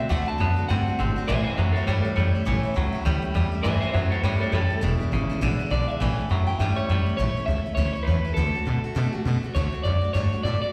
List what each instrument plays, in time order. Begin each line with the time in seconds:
0.00 steel-string acoustic guitar A3 D4
0.09 upright bass D2, steel-string acoustic guitar D3 A3 D4 F#4, clean electric guitar D3 A3 F#5
0.26 steel-string acoustic guitar A3 D4 F#4, clean electric guitar A5, muted upright bass stroke
0.38 upright bass F#2, steel-string acoustic guitar D3 A3 D4 F#4, clean electric guitar D3 B3
0.56 steel-string acoustic guitar A3 D4 F#4, muted upright bass stroke
0.69 upright bass G2, steel-string acoustic guitar D3 A3 D4 F#4, clean electric guitar D3 C4 F#5
0.86 steel-string acoustic guitar A3 D4 F#4, muted upright bass stroke
0.99 upright bass G#1, steel-string acoustic guitar D3 A3 D4 F#4, clean electric guitar D3 C4
1.16 steel-string acoustic guitar A3 D4 F#4, muted upright bass stroke
1.28 upright bass A1, steel-string acoustic guitar A2 E3 A3 C#4 E4, clean electric guitar A2 E3 C5 E5
1.43 steel-string acoustic guitar E4, clean electric guitar C5 E5, muted upright bass stroke
1.47 steel-string acoustic guitar A3 C#4
1.56 upright bass F#2, clean electric guitar A2 F#3 C5 E5, steel-string acoustic guitar E3 A3 C#4
1.60 steel-string acoustic guitar E4
1.73 steel-string acoustic guitar E4, clean electric guitar A4 C#5
1.77 steel-string acoustic guitar A3 C#4
1.86 upright bass G2, steel-string acoustic guitar A2 E3 A3 C#4 E4, clean electric guitar A2 G3 A4 C#5
2.02 steel-string acoustic guitar C#4 E4, clean electric guitar A4 C#5, muted upright bass stroke
2.07 steel-string acoustic guitar A3
2.16 upright bass F#2, clean electric guitar A2 G3 C#5, steel-string acoustic guitar E3 A3 C#4 E4
2.34 steel-string acoustic guitar A3 C#4 E4, muted upright bass stroke
2.45 upright bass A1, steel-string acoustic guitar A2 E3 A3 C#4 E4, clean electric guitar A2 E3
2.63 steel-string acoustic guitar A3 C#4 E4
2.74 upright bass C#2, clean electric guitar A2 F#3, steel-string acoustic guitar E3 A3 C#4 E4
2.92 steel-string acoustic guitar A3 C#4 E4, muted upright bass stroke
3.05 upright bass D2, steel-string acoustic guitar A2 E3 A3 C#4 E4, clean electric guitar A2 G3
3.22 steel-string acoustic guitar A3 C#4 E4, muted upright bass stroke
3.34 upright bass E2, clean electric guitar A2 G3, steel-string acoustic guitar E3 A3 C#4 E4
3.52 steel-string acoustic guitar A3 C#4 E4, muted upright bass stroke
3.63 upright bass G2, clean electric guitar A2 E3 C5 E5, steel-string acoustic guitar A2 E3 A3 C#4 E4
3.80 steel-string acoustic guitar C#4 E4, clean electric guitar C5 E5, muted upright bass stroke
3.85 steel-string acoustic guitar A3
3.92 upright bass F#2, clean electric guitar A2 F#3 C5 E5, steel-string acoustic guitar E3 A3 C#4
3.96 steel-string acoustic guitar E4
4.10 steel-string acoustic guitar C#4 E4, clean electric guitar A4 C#5, muted upright bass stroke
4.15 steel-string acoustic guitar A3
4.23 upright bass G2, steel-string acoustic guitar A2 E3 A3 C#4 E4, clean electric guitar A2 G3 A4 C#5
4.40 steel-string acoustic guitar A3 C#4 E4, clean electric guitar A4 C#5
4.52 upright bass F#2, clean electric guitar A2 G3 A4, steel-string acoustic guitar E3 A3 C#4 E4
4.70 steel-string acoustic guitar A3 C#4 E4, muted upright bass stroke
4.81 upright bass E1, steel-string acoustic guitar E2 B2 E3 G#3 D4 E4, clean electric guitar E2 B2
5.00 steel-string acoustic guitar E3 G#3 D4 E4, muted upright bass stroke
5.12 upright bass G#1, clean electric guitar E2 C#3, steel-string acoustic guitar E3 G#3 D4 E4
5.30 steel-string acoustic guitar E3 G#3 D4 E4, muted upright bass stroke
5.41 upright bass A1, steel-string acoustic guitar E2 B2 E3 G#3 D4 E4, clean electric guitar E2 D3
5.59 steel-string acoustic guitar E3 G#3 D4 E4, muted upright bass stroke
5.70 upright bass B1, clean electric guitar E2 D3 D5, steel-string acoustic guitar E3 G#3 D4 E4
5.88 steel-string acoustic guitar E3 G#3 D4 E4, clean electric guitar E5, muted upright bass stroke
6.00 upright bass A1, steel-string acoustic guitar A2 E3 A3 C#4 E4, clean electric guitar A2 E3 G5
6.18 steel-string acoustic guitar A3 C#4 E4, clean electric guitar A5, muted upright bass stroke
6.29 upright bass F#2, clean electric guitar A2 F#3, steel-string acoustic guitar E3 A3 C#4 E4
6.46 steel-string acoustic guitar A3 C#4 E4, clean electric guitar G5, muted upright bass stroke
6.58 upright bass G2, steel-string acoustic guitar A2 E3 A3 C#4 E4, clean electric guitar A2 G3 E5
6.76 steel-string acoustic guitar A3 C#4 E4, clean electric guitar C#5
6.89 upright bass F#2, clean electric guitar A2 G3, steel-string acoustic guitar E3 A3 C#4 E4
7.06 steel-string acoustic guitar A3 C#4 E4, muted upright bass stroke
7.17 upright bass A1, steel-string acoustic guitar A2 E3 A3 C#4 E4, clean electric guitar C#5
7.36 steel-string acoustic guitar A3 C#4 E4, muted upright bass stroke
7.46 upright bass C#2, steel-string acoustic guitar A3, clean electric guitar E5
7.50 steel-string acoustic guitar C#4 E4
7.65 steel-string acoustic guitar A3 C#4 E4, muted upright bass stroke
7.75 upright bass D2, steel-string acoustic guitar A2 E3 A3 C#4 E4, clean electric guitar C#5
7.93 steel-string acoustic guitar E4, clean electric guitar C#5, muted upright bass stroke
7.98 steel-string acoustic guitar A3
8.03 clean electric guitar B4
8.07 upright bass E2, steel-string acoustic guitar E3 A3 C#4 E4
8.24 steel-string acoustic guitar A3 C#4 E4, muted upright bass stroke
8.34 upright bass D2, steel-string acoustic guitar D3 A3, clean electric guitar A4
8.38 steel-string acoustic guitar D4 F#4
8.55 steel-string acoustic guitar A3 D4 F#4, muted upright bass stroke
8.65 upright bass B2, steel-string acoustic guitar D3 A3 D4 F#4
8.84 steel-string acoustic guitar A3 D4 F#4, muted upright bass stroke
8.95 upright bass B2, steel-string acoustic guitar D3 A3 D4 F#4
9.12 steel-string acoustic guitar A3 D4 F#4, muted upright bass stroke
9.25 upright bass B2, steel-string acoustic guitar D3 A3 D4 F#4
9.43 steel-string acoustic guitar A3 D4 F#4, muted upright bass stroke
9.55 upright bass D2, steel-string acoustic guitar D3 A3 D4 F#4, clean electric guitar C#5
9.73 steel-string acoustic guitar A3 D4 F#4, muted upright bass stroke
9.83 upright bass F#2, steel-string acoustic guitar D3 A3 D4 F#4, clean electric guitar D5
10.02 steel-string acoustic guitar A3 D4 F#4, muted upright bass stroke
10.13 upright bass G2, steel-string acoustic guitar D3 A3 D4 F#4, clean electric guitar C#5
10.32 steel-string acoustic guitar A3 D4 F#4, muted upright bass stroke
10.43 upright bass A2, steel-string acoustic guitar D3 A3 D4, clean electric guitar D5
10.48 steel-string acoustic guitar F#4
10.62 steel-string acoustic guitar A3 D4 F#4, clean electric guitar D5, muted upright bass stroke